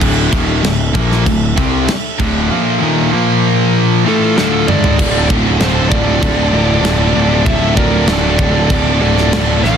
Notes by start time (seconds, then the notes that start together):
Already playing: D4 A4 E5
0.00 D1 D2 A2 D3, kick, crash
0.30 D#1 D#2 A#2 D#3, kick, crash
0.62 D1 D2 A2, snare, crash
0.94 A#1 A#2 F3 A#3, kick, crash
1.12 snare
1.26 D1 D2 A2, kick, crash
1.56 C2 C3 G3 C4, kick, crash
1.88 muted picked electric bass stroke, muted distorted electric guitar stroke, snare, crash
2.19 D1 D2 A2 D3, kick, crash
2.51 A#2 F3 A#3
2.81 D#2 A#2 D#3
3.12 A#2 F3 A#3 F4 C5
4.05 A2 E3 A3 D4 F4 A4 E5 A5
4.37 D2 A2 D3 F4 A4, snare
4.67 G#2 D#3 G#3 A4 D5, mid tom
4.84 floor tom
4.97 D1 D2 A2 D3 F3 A3 F4, kick, crash
5.07 D2 A2 A3 F4
5.13 D2 A2 A3 F4
5.22 D2 A2 A3 F4
5.28 D1 D2 A2 D3 A3 F4, kick
5.36 D2 A2 A3 F4
5.45 D2 A2 A3 F4
5.52 D2 A2 A3 F4
5.59 D1 D2 A2 D3 A3 F4 A4 C5, snare, crash
5.68 D2 A2 A3 F4
5.75 D2 A2 A3 F4
5.83 D2 A2 A3 F4
5.90 D1 D2 A2 D3 A3 F4 A4 D5, kick
5.99 D2 A2 A3 F4
6.06 D2 A2 A3 F4
6.14 D2 A2 A3 F4
6.21 D1 D2 A2 D3 A3 F4, kick, crash
6.29 D2 A2 A3 F4
6.36 D2 A2 A3 F4
6.44 D2 A2 A3 F4
6.52 D1 D2 A2 D3 A3 F4
6.58 D2 A2 A3 F4
6.67 D2 A2 A3 F4
6.75 D2 A2 A3 F4
6.82 D1 D2 A2 D3 A3 F4, snare, crash
6.90 D2 A2 A3 F4
6.98 D2 A2 A3 F4
7.06 D2 A2 A3 F4
7.13 D1 D2 A2 D3 A3 F4
7.20 D2 A2 A3 F4
7.28 D2 A2 A3 F4
7.37 D2 A2 A3 F4
7.45 D1 D2 A2 D3 A3 D4 F4 A4 E5, kick, crash
7.53 D2 A2 A3 F4
7.61 D2 A2 A3 F4
7.68 D2 A2 A3 F4
7.76 D1 D2 A2 D3 A3 F4 A#4 D5, kick
7.84 D2 A2 A3 F4
7.91 D2 A2 A3 F4
7.99 D2 A2 A3 F4
8.07 D1 D2 A2 D3 A3 F4 A4 D5, snare, crash
8.15 D2 A2 A3 F4
8.22 D2 A2 A3 F4
8.30 D2 A2 A3 F4
8.38 D1 D2 A2 D3 A3 F4, kick
8.46 D2 A2 A3 F4
8.54 D2 A2 A3 F4
8.61 D2 A2 A3 F4
8.68 D1 D2 A2 D3 A3 F4, kick, crash
8.77 D2 A2 A3 F4
8.84 D2 A2 A3 F4
8.92 D2 A2 A3 F4
9.00 D1 D2 A2 D3 A3 F4 A4 D5
9.06 D2 A2 A3 F4
9.14 D2 A2 A3 F4, snare
9.22 D2 A2 A3 F4
9.29 D1 D2 A2 D3 A3 F4, snare, crash
9.39 D2 A2 A3 F4
9.46 D2 A2 A3 F4
9.53 D2 A2 A3 F4
9.61 A1 D2 A2 D3 A3 F4 D5 F5, snare
9.68 D2 A2 A3 F4